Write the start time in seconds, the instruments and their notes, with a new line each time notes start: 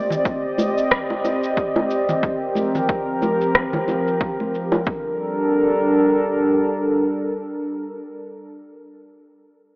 Already playing: ambient pad C4 G4 D5 D#5
0.10 low conga, shaker
0.25 kick, shaker
0.58 high bongo, high conga, shaker
0.78 shaker
0.91 kick, cross-stick, shaker
1.10 high bongo
1.25 high bongo, shaker
1.43 shaker
1.57 kick, shaker
1.76 high bongo, high conga
1.90 shaker
2.09 low conga, shaker
2.23 ambient pad F3 A#4, kick, shaker
2.55 high conga, shaker
2.75 low conga, shaker
2.89 kick, shaker
3.22 high bongo, high conga, shaker
3.41 shaker
3.55 kick, cross-stick, shaker
3.73 high bongo, low conga
3.88 high bongo, shaker
4.07 shaker
4.21 kick, shaker
4.40 high conga
4.55 shaker
4.72 high bongo, shaker
4.87 ambient pad G3 D4 A4 A#4, kick